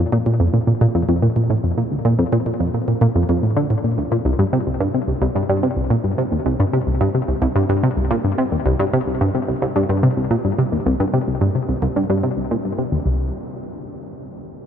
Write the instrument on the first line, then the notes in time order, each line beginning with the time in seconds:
synth arpeggio sound
0.12 A#2
0.26 A#2
0.40 F2
0.54 A#2
0.67 A#2
0.81 A#2
0.95 F2
1.09 F2
1.22 A#2
1.36 A#2
1.50 A2
1.64 F2
1.78 A#2
1.91 D2
2.05 A#2
2.19 F2
2.33 A#2
2.46 A#2
2.60 F2
2.74 A#2
2.88 A#2
3.01 A#2
3.15 F2
3.29 F2
3.43 A2
3.57 D3
3.70 A2
3.84 A#2
3.98 D2
4.12 A#2
4.25 C2
4.39 G2
4.53 C3
4.67 C2
4.80 G2
4.94 C3
5.08 C2
5.22 C2
5.35 G2
5.49 G2
5.63 C3
5.77 C2
5.90 A#2
6.04 G2
6.18 C3
6.32 D#2
6.46 C2
6.60 G2
6.73 C3
6.87 C2
7.01 G2
7.15 C3
7.28 C2
7.42 C2
7.56 G2
7.69 G2
7.83 C3
7.97 C2
8.11 A#2
8.24 G2
8.38 C3
8.52 D#2
8.66 C2
8.79 G2
8.93 C3
9.07 C2
9.21 G2
9.35 C3
9.48 C2
9.62 C2
9.76 G2
9.89 G2
10.03 C3
10.17 C2
10.31 A#2
10.45 G2
10.58 C3
10.72 D#2
10.86 C2
11.00 G2
11.14 C3
11.28 C2
11.41 G2
11.55 C3
11.69 C2
11.82 C2
11.96 G2
12.10 G2
12.23 C3
12.37 C2
12.51 A#2
12.65 G2
12.78 C3
12.92 D#2
13.06 C2